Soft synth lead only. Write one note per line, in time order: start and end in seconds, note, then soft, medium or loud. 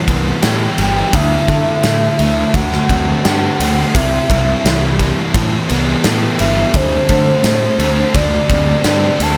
0.81 1.16 G5 loud
1.15 2.56 E5 loud
2.55 3.23 F#5 loud
3.24 3.97 F#5 loud
3.95 5.35 E5 medium
6.40 6.77 E5 medium
6.75 8.17 C5 loud
8.15 8.85 D5 medium
8.86 9.23 D5 loud
9.22 9.37 A5 loud